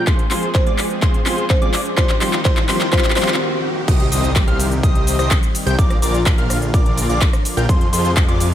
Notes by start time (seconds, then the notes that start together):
Already playing: F3, riser
0.07 G#3 C4 F4 G#4 C5 C6, kick, clap, closed hi-hat
0.19 closed hi-hat
0.30 F3 G#3 C4 F4 G#4 C5 C6, clap, open hi-hat
0.43 closed hi-hat
0.55 C5, kick, clap, closed hi-hat
0.66 F3 G#3 C4 F4 G#4 D5 D6, closed hi-hat
0.78 clap, open hi-hat
0.90 closed hi-hat
1.02 F4 G#4 C5 C6, kick, clap, closed hi-hat
1.14 closed hi-hat
1.25 F3 G#3 C4 F4 G#4 C5 C6, clap, open hi-hat
1.38 closed hi-hat
1.50 C5, kick, clap, closed hi-hat
1.61 F3 G#3 C4 F4 G#4 D5 D6, closed hi-hat
1.74 clap, open hi-hat
1.86 closed hi-hat
1.97 D#3 G3 A#3 F4 G4 C5 C6, kick, clap, closed hi-hat
2.09 clap, closed hi-hat
2.21 F3 G3 C4 F4 G4 C5 C6, clap, open hi-hat
2.33 clap, closed hi-hat
2.45 F4 G4 C5 C6, kick, clap, closed hi-hat
2.57 clap, closed hi-hat
2.68 F3 G3 C4 F4 G4 C5 C6, clap, open hi-hat
2.81 clap, closed hi-hat
2.92 F3 G3 C4 F4 G4 C5 C6, kick, clap, closed hi-hat, swell
2.99 clap
3.04 clap, closed hi-hat
3.10 clap
3.16 F3 G3 C4 F4 G4 C5 C6, clap, open hi-hat
3.22 clap
3.28 clap, closed hi-hat
3.34 clap
3.88 C2 D#3 G3 C4 G4 C5 D#5 D#6, kick, closed hi-hat, crash, impact, shaker
4.00 closed hi-hat
4.12 C2 G4 C5 D#5 D#6, open hi-hat, ride, shaker
4.24 closed hi-hat, shaker
4.36 kick, clap, closed hi-hat, shaker
4.48 C2 G4 C5 F5 F6, closed hi-hat
4.60 open hi-hat, ride, shaker
4.72 closed hi-hat, shaker
4.83 C2 G4 C5 D#5 D#6, kick, closed hi-hat, shaker
4.95 closed hi-hat
5.07 open hi-hat, ride, shaker
5.19 C2 G4 C5 D#5 D#6, cross-stick, closed hi-hat, shaker
5.31 kick, clap, closed hi-hat, shaker
5.43 closed hi-hat, shaker
5.55 open hi-hat, ride, shaker
5.66 C2 G4 C5 G5 G6, closed hi-hat, shaker
5.78 A#1 D3 F3 A#3 F4 A#4 D5 D6, kick, closed hi-hat, shaker
5.90 cross-stick, closed hi-hat
6.02 A#1 F4 A#4 D5 D6, open hi-hat, ride, shaker
6.14 closed hi-hat, shaker
6.26 kick, clap, closed hi-hat, shaker
6.38 A#1 F4 A#4 F5 F6, closed hi-hat
6.50 cross-stick, open hi-hat, ride, shaker
6.62 closed hi-hat, shaker
6.74 A#1 F4 A#4 D5 D6, kick, closed hi-hat, shaker
6.86 closed hi-hat
6.98 open hi-hat, ride, shaker
7.09 A#1 F4 A#4 D5 D6, closed hi-hat, shaker
7.21 kick, clap, closed hi-hat, shaker
7.33 cross-stick, closed hi-hat, shaker
7.45 open hi-hat, ride, shaker
7.57 A#1 F4 A#4 G5 G6, closed hi-hat, shaker
7.69 F2 C3 F3 G#3 F4 G#4 C5 C6, kick, closed hi-hat, shaker
7.81 closed hi-hat
7.93 F2 F4 G#4 C5 C6, open hi-hat, ride, shaker
8.05 closed hi-hat, shaker
8.17 kick, clap, closed hi-hat, shaker
8.29 F2 F4 G#4 D5 D6, closed hi-hat
8.40 open hi-hat, ride, shaker